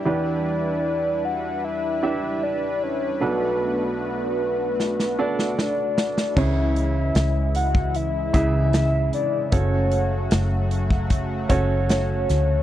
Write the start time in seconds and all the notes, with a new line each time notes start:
Already playing: G3 E4
0.05 E2 E3 D4 E4 G4 B4 D5
1.25 F#5
1.64 E5
2.03 D4 E4 G4 E5
2.43 D5
2.83 C#5
3.21 B1 B2 A3 D4 F#4 A4 B4
4.80 snare
5.00 snare
5.19 D4 F#4 A4 D5
5.39 snare
5.59 D5, snare
5.98 snare
6.18 snare
6.36 C#2 C#3 E3 G#3 C#4 E4 G#4 C#5 E5, kick, crash
6.76 closed hi-hat
7.15 C#2, snare, closed hi-hat
7.55 F#5, closed hi-hat
7.75 kick
7.95 E5, closed hi-hat
8.34 C#2 C#3 E4 G#4 E5, kick, closed hi-hat
8.73 E5, snare, closed hi-hat
9.13 D5, closed hi-hat
9.52 F#1 F#3 A3 C#4 F#4 A4 C#5, kick, closed hi-hat
9.92 closed hi-hat
10.31 F#1, snare, closed hi-hat
10.71 closed hi-hat
10.90 kick
11.10 kick, closed hi-hat
11.49 F#1 C#4 F#4 A4 C#5, kick, closed hi-hat
11.89 C#5, snare, closed hi-hat
12.29 D2, snare, closed hi-hat